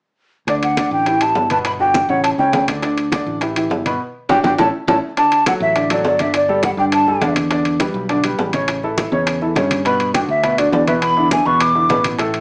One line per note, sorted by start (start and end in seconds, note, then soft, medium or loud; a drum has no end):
0.47 0.88 D2 medium
0.47 0.72 D3 medium
0.47 0.72 D4 medium
0.47 0.72 D5 medium
0.47 0.55 D5 medium
0.47 high bongo medium
0.47 high conga soft
0.47 high timbale medium
0.62 0.90 F#5 medium
0.62 high bongo soft
0.62 high conga soft
0.62 high timbale medium
0.77 1.01 D3 medium
0.77 1.01 D4 medium
0.77 1.02 D5 medium
0.77 high bongo medium
0.77 high conga medium
0.77 high timbale medium
0.77 low timbale medium
0.91 1.32 A1 medium
0.91 1.23 G5 medium
0.91 high conga soft
1.06 1.18 E3 medium
1.06 1.19 E4 medium
1.06 1.19 G4 medium
1.06 high bongo medium
1.06 high conga soft
1.06 high timbale medium
1.21 1.45 E3 medium
1.21 1.45 E4 medium
1.21 1.45 G4 medium
1.21 1.51 A5 medium
1.21 high bongo soft
1.21 high conga soft
1.21 high timbale medium
1.35 2.03 G1 medium
1.35 high bongo soft
1.35 low bongo medium
1.35 high conga soft
1.35 low timbale medium
1.50 1.75 B2 medium
1.50 1.75 B3 medium
1.50 1.75 B4 medium
1.50 1.58 A5 medium
1.50 high bongo soft
1.50 high conga medium
1.50 high timbale medium
1.65 1.72 B5 loud
1.65 high bongo medium
1.65 high conga soft
1.65 high timbale medium
1.80 2.04 D3 medium
1.80 2.04 D4 medium
1.80 2.04 F#4 medium
1.80 2.11 G5 loud
1.80 high bongo soft
1.80 high conga soft
1.94 high bongo medium
1.94 high conga medium
1.94 high timbale medium
1.94 low timbale medium
2.09 2.36 A1 medium
2.09 2.33 C#3 medium
2.09 2.34 C#4 medium
2.09 2.34 C#5 medium
2.09 2.23 F#5 medium
2.09 high conga soft
2.24 2.30 A5 medium
2.24 high bongo medium
2.24 high conga soft
2.24 high timbale medium
2.38 2.52 C#2 medium
2.38 2.63 C#3 medium
2.38 2.63 C#4 medium
2.38 2.63 C#5 medium
2.38 2.66 G5 medium
2.38 high bongo soft
2.38 high conga soft
2.52 3.21 D2 medium
2.52 high bongo soft
2.52 low bongo medium
2.52 high conga medium
2.52 high timbale medium
2.52 low timbale medium
2.68 2.80 D3 medium
2.68 2.80 D4 medium
2.68 2.81 D5 medium
2.68 high bongo soft
2.68 high conga medium
2.68 high timbale medium
2.82 3.07 D3 medium
2.82 3.07 D4 medium
2.82 3.07 D5 medium
2.82 high bongo medium
2.82 high conga soft
2.82 high timbale medium
2.97 high bongo soft
2.97 high conga soft
2.97 high timbale medium
3.12 3.36 D3 medium
3.12 3.36 D4 medium
3.12 3.37 D5 medium
3.12 high bongo medium
3.12 high conga loud
3.12 high timbale medium
3.12 low timbale medium
3.26 3.67 A1 medium
3.26 high conga soft
3.41 3.54 E3 medium
3.41 3.54 E4 medium
3.41 3.54 G4 medium
3.41 high bongo medium
3.41 high conga soft
3.41 high timbale medium
3.56 3.80 E3 medium
3.56 3.80 E4 medium
3.56 3.81 G4 medium
3.56 high bongo soft
3.56 high conga soft
3.56 high timbale medium
3.70 3.98 G1 medium
3.70 high bongo soft
3.70 low bongo medium
3.70 high conga soft
3.70 low timbale medium
3.86 3.98 B2 medium
3.86 3.98 B3 medium
3.86 3.98 B4 medium
3.86 high bongo soft
3.86 high conga medium
3.86 high timbale medium
4.29 4.40 G1 medium
4.29 4.39 D4 medium
4.29 4.39 F#4 loud
4.29 4.39 G4 medium
4.29 4.39 G5 loud
4.29 low bongo loud
4.29 high conga loud
4.29 high timbale medium
4.43 4.54 G1 medium
4.43 4.53 D4 medium
4.43 4.53 F#4 medium
4.43 4.53 G4 medium
4.43 4.54 G5 medium
4.43 low bongo medium
4.43 high conga medium
4.43 high timbale medium
4.58 4.69 A1 medium
4.58 4.68 A3 medium
4.58 4.68 C#4 medium
4.58 4.68 E4 medium
4.58 4.68 A5 medium
4.58 low bongo medium
4.58 high conga medium
4.58 high timbale medium
4.87 4.98 A1 medium
4.87 4.97 A3 medium
4.87 4.97 C#4 medium
4.87 4.97 E4 medium
4.87 4.97 A5 medium
4.87 low bongo medium
4.87 high conga loud
4.87 high timbale loud
5.17 5.41 D3 medium
5.17 5.41 D4 medium
5.17 5.42 D5 medium
5.17 5.44 A5 loud
5.17 high bongo medium
5.17 high conga soft
5.17 high timbale medium
5.32 high bongo soft
5.32 high conga soft
5.32 high timbale medium
5.46 5.70 F#3 medium
5.46 5.70 F#4 medium
5.46 5.71 A4 medium
5.46 5.54 F#5 loud
5.46 high bongo medium
5.46 high conga medium
5.46 high timbale medium
5.46 low timbale medium
5.60 6.01 A1 medium
5.60 5.89 E5 loud
5.60 high conga soft
5.76 5.88 D3 medium
5.76 5.88 D4 medium
5.76 5.88 D5 medium
5.76 high bongo medium
5.76 high conga soft
5.76 high timbale medium
5.90 6.14 F#3 medium
5.90 6.14 F#4 medium
5.90 6.14 A4 medium
5.90 6.05 D5 medium
5.90 high bongo soft
5.90 high conga soft
5.90 high timbale medium
6.04 6.72 G1 medium
6.04 6.23 D5 medium
6.04 high bongo soft
6.04 low bongo medium
6.04 high conga soft
6.04 low timbale medium
6.19 6.43 D3 medium
6.19 6.44 D4 medium
6.19 6.44 D5 medium
6.19 6.35 E5 medium
6.19 high bongo soft
6.19 high conga medium
6.19 high timbale medium
6.34 6.62 D5 medium
6.34 high bongo medium
6.34 high conga soft
6.34 high timbale medium
6.48 6.73 G3 medium
6.48 6.73 G4 medium
6.48 6.73 A4 medium
6.48 high bongo soft
6.48 high conga soft
6.63 6.70 F#5 medium
6.63 high bongo medium
6.63 high conga medium
6.63 high timbale medium
6.63 low timbale medium
6.77 7.18 G2 medium
6.77 7.02 D3 medium
6.77 7.02 D4 medium
6.77 7.02 D5 medium
6.77 6.85 G5 medium
6.77 high conga soft
6.92 7.34 A5 medium
6.92 high bongo medium
6.92 high conga soft
6.92 high timbale medium
7.07 7.19 G3 medium
7.07 7.19 G4 medium
7.07 7.20 A4 medium
7.07 high bongo soft
7.07 high conga soft
7.21 7.89 E2 medium
7.21 7.46 D3 medium
7.21 7.46 D4 medium
7.21 7.46 D5 medium
7.21 high bongo soft
7.21 low bongo medium
7.21 high conga medium
7.21 high timbale medium
7.21 low timbale medium
7.36 high bongo soft
7.36 high conga medium
7.36 high timbale medium
7.51 7.75 D3 medium
7.51 7.75 D4 medium
7.51 7.75 D5 medium
7.51 high bongo medium
7.51 high conga soft
7.51 high timbale medium
7.65 high bongo soft
7.65 high conga soft
7.65 high timbale medium
7.80 8.04 G3 medium
7.80 8.05 G4 medium
7.80 8.05 B4 medium
7.80 high bongo medium
7.80 high conga loud
7.80 high timbale medium
7.80 low timbale medium
7.94 8.35 B1 medium
7.94 high conga soft
8.09 8.22 D3 medium
8.09 8.22 D4 medium
8.09 8.22 D5 medium
8.09 high bongo medium
8.09 high conga soft
8.09 high timbale medium
8.24 8.48 G3 medium
8.24 8.48 G4 medium
8.24 8.49 B4 medium
8.24 high bongo soft
8.24 high conga soft
8.24 high timbale medium
8.38 9.06 A1 medium
8.38 high bongo soft
8.38 low bongo medium
8.38 high conga soft
8.38 low timbale medium
8.53 8.78 C#3 medium
8.53 8.78 C#4 medium
8.53 8.78 C#5 medium
8.53 high bongo soft
8.53 high conga medium
8.53 high timbale medium
8.68 high bongo medium
8.68 high conga soft
8.68 high timbale medium
8.83 9.07 E3 medium
8.83 9.07 E4 medium
8.83 9.08 A4 medium
8.83 high bongo soft
8.83 high conga soft
8.98 high bongo medium
8.98 high conga loud
8.98 high timbale medium
8.98 low timbale medium
9.12 9.53 E2 medium
9.12 9.36 C#3 medium
9.12 9.36 C#4 medium
9.12 9.37 C#5 medium
9.12 high conga soft
9.27 high bongo medium
9.27 high conga soft
9.27 high timbale loud
9.41 9.54 E3 medium
9.41 9.54 E4 medium
9.41 9.54 A4 medium
9.41 high bongo soft
9.41 high conga soft
9.55 10.23 G2 medium
9.55 9.80 C#3 medium
9.55 9.80 C#4 medium
9.55 9.81 C#5 medium
9.55 high bongo soft
9.55 low bongo medium
9.55 high conga medium
9.55 high timbale medium
9.55 low timbale medium
9.71 high bongo soft
9.71 high conga medium
9.71 high timbale loud
9.85 10.10 B2 medium
9.85 10.10 B3 medium
9.85 10.10 B4 medium
9.85 10.13 B5 medium
9.85 high bongo medium
9.85 high conga soft
9.85 high timbale medium
10.00 high bongo soft
10.00 high conga soft
10.00 high timbale medium
10.14 10.38 D3 medium
10.14 10.39 D4 medium
10.14 10.39 F#4 medium
10.14 10.21 G5 medium
10.14 high bongo medium
10.14 high conga medium
10.14 high timbale loud
10.14 low timbale medium
10.28 10.70 D2 medium
10.28 10.60 E5 medium
10.28 high conga soft
10.43 10.56 B2 medium
10.43 10.56 B3 medium
10.43 10.56 B4 medium
10.43 high bongo medium
10.43 high conga soft
10.43 high timbale medium
10.58 10.82 D3 medium
10.58 10.82 D4 medium
10.58 10.82 F#4 medium
10.58 10.72 D5 medium
10.58 high bongo soft
10.58 high conga soft
10.58 high timbale medium
10.72 11.40 E2 medium
10.72 10.87 D5 medium
10.72 high bongo soft
10.72 low bongo medium
10.72 high conga soft
10.72 low timbale medium
10.87 11.11 B2 medium
10.87 11.12 B3 medium
10.87 11.12 B4 medium
10.87 10.94 E5 medium
10.87 high bongo soft
10.87 high conga medium
10.87 high timbale medium
11.02 11.30 B5 loud
11.02 high bongo medium
11.02 high conga soft
11.02 high timbale medium
11.17 11.41 D3 medium
11.17 11.41 D4 medium
11.17 11.41 E4 medium
11.17 high bongo soft
11.17 high conga soft
11.31 11.48 G#5 loud
11.31 high bongo medium
11.31 high conga medium
11.31 high timbale medium
11.31 low timbale medium
11.45 11.86 E2 medium
11.45 11.70 B2 medium
11.45 11.70 B3 medium
11.45 11.70 B4 medium
11.45 11.62 C#6 loud
11.45 high conga soft
11.60 12.05 D6 medium
11.60 high bongo medium
11.60 high conga soft
11.60 high timbale loud
11.75 11.87 D3 medium
11.75 11.87 D4 medium
11.75 11.87 E4 medium
11.75 high bongo soft
11.75 high conga soft
11.89 12.40 A1 medium
11.89 12.14 B2 medium
11.89 12.14 B3 medium
11.89 12.14 B4 medium
11.89 high bongo soft
11.89 low bongo medium
11.89 high conga medium
11.89 high timbale medium
11.89 low timbale medium
12.04 high bongo soft
12.04 high conga medium
12.04 high timbale medium
12.19 12.40 A2 medium
12.19 12.40 A3 medium
12.19 12.40 A4 medium
12.19 high bongo medium
12.19 high conga soft
12.19 high timbale medium
12.34 high bongo soft
12.34 high conga soft
12.34 high timbale medium